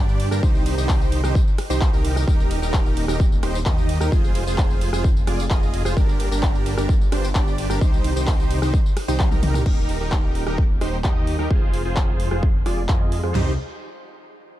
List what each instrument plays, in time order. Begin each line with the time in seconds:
Already playing: detuned saw bass G2, supersaw synth D4 G4 D5
0.09 tambourine
0.20 open hi-hat, ride
0.31 detuned saw bass G2, supersaw synth D4 G4 A#4, cross-stick, tambourine
0.43 detuned saw bass C2, supersaw synth D#4 G4 C5, kick, tambourine
0.55 tambourine
0.66 open hi-hat, ride
0.77 detuned saw bass C2, supersaw synth D#4 G4 C5, tambourine
0.89 kick, clap, open hi-hat, tambourine
1.01 tambourine
1.12 open hi-hat, ride
1.24 detuned saw bass C2, supersaw synth D#4 G4 C5, cross-stick, tambourine
1.35 kick, tambourine
1.48 tambourine
1.58 cross-stick, open hi-hat, ride
1.70 detuned saw bass C2, supersaw synth D#4 G4 C5, tambourine
1.81 kick, clap, tambourine
1.93 detuned saw bass C2, supersaw synth D#4 G4 A#4, tambourine
2.05 open hi-hat, ride
2.16 cross-stick, tambourine
2.28 detuned saw bass D#1, supersaw synth G4 A#4, kick, tambourine
2.40 tambourine
2.51 open hi-hat, ride
2.62 detuned saw bass D#1, supersaw synth D#4 G4 A#4, tambourine
2.74 kick, clap, tambourine
2.86 tambourine
2.97 open hi-hat, ride
3.08 detuned saw bass D#1, supersaw synth D#4 G4 A#4, cross-stick, tambourine
3.20 kick, tambourine
3.32 tambourine
3.43 detuned saw bass D#1, supersaw synth D#4 G4 C5, cross-stick, open hi-hat, ride
3.55 tambourine
3.66 detuned saw bass D#2, supersaw synth D#4 G4 D#5, kick, clap, tambourine
3.78 tambourine
3.89 open hi-hat, ride
4.00 detuned saw bass D#2, supersaw synth D#4 G4 A#4, cross-stick, tambourine
4.12 detuned saw bass F1, supersaw synth G#4, kick, tambourine
4.24 tambourine
4.35 open hi-hat, ride
4.47 detuned saw bass F1, supersaw synth F4 G#4 C5, tambourine
4.58 kick, clap, tambourine
4.71 tambourine
4.81 open hi-hat, ride
4.93 detuned saw bass F1, supersaw synth F4 G#4 C5, cross-stick, tambourine
5.04 kick, tambourine
5.17 tambourine
5.27 detuned saw bass F1, supersaw synth F4 G#4 D5, cross-stick, open hi-hat, ride
5.40 tambourine
5.50 detuned saw bass F1, supersaw synth F4 G#4 D#5, kick, clap, tambourine
5.63 tambourine
5.74 open hi-hat, ride
5.85 detuned saw bass F1, supersaw synth F4 G#4 C5, cross-stick, tambourine
5.97 detuned saw bass G1, supersaw synth D4 G4 A#4, kick, tambourine
6.09 tambourine
6.20 open hi-hat, ride
6.31 detuned saw bass G1, supersaw synth D4 G4 A#4, tambourine
6.43 kick, clap, tambourine
6.55 tambourine
6.66 open hi-hat, ride
6.77 detuned saw bass G1, supersaw synth D4 G4 A#4, cross-stick, tambourine
6.89 kick, tambourine
7.01 tambourine
7.12 detuned saw bass G1, supersaw synth D4 G4 C5, cross-stick, open hi-hat, ride
7.25 tambourine
7.35 detuned saw bass G1, supersaw synth D4 G4 D5, kick, clap, tambourine
7.48 tambourine
7.58 open hi-hat, ride
7.70 detuned saw bass G1, supersaw synth D4 G4 A#4, cross-stick, tambourine
7.81 detuned saw bass C2, supersaw synth D#4 G4 C5, kick, tambourine
7.94 tambourine
8.04 open hi-hat, ride
8.16 detuned saw bass C2, supersaw synth D#4 G4 C5, tambourine
8.27 kick, clap, open hi-hat, tambourine
8.40 tambourine
8.51 open hi-hat, ride
8.62 detuned saw bass C2, supersaw synth D#4 G4 C5, cross-stick, tambourine
8.74 kick, tambourine
8.86 tambourine
8.97 cross-stick, open hi-hat, ride
9.08 detuned saw bass C2, supersaw synth D#4 G4 C5, tambourine
9.20 kick, clap, high tom, tambourine
9.31 detuned saw bass C2, supersaw synth D#4 G4 A#4, high tom, tambourine
9.43 open hi-hat, mid tom, ride
9.54 cross-stick, mid tom, tambourine
9.66 detuned saw bass D#1, supersaw synth D#4 G4 A#4, kick, crash
9.89 open hi-hat
10.00 detuned saw bass D#1, supersaw synth D#4 G4 A#4
10.12 kick, clap
10.35 open hi-hat
10.47 detuned saw bass D#1, supersaw synth D#4 G4 A#4, cross-stick
10.58 kick
10.81 detuned saw bass D#1, supersaw synth D#4 G4 C5, cross-stick, open hi-hat
11.04 detuned saw bass D#2, supersaw synth D#4 G4 D#5, kick, clap
11.27 open hi-hat
11.39 detuned saw bass D#2, supersaw synth D#4 G4 A#4, cross-stick
11.51 detuned saw bass F1, supersaw synth F4 G#4, kick
11.74 open hi-hat
11.85 detuned saw bass F1, supersaw synth F4 G#4 C5
11.96 kick, clap
12.20 open hi-hat
12.31 detuned saw bass F1, supersaw synth F4 G#4 C5, cross-stick
12.43 kick
12.66 detuned saw bass F1, supersaw synth F4 G#4 D5, cross-stick, open hi-hat
12.89 detuned saw bass F2, supersaw synth F4 G#4 D#5, kick, clap
13.12 open hi-hat
13.24 detuned saw bass F2, supersaw synth F4 G#4 C5, cross-stick
13.35 detuned saw bass C2, supersaw synth D#4 G4 C5, snare, floor tom, crash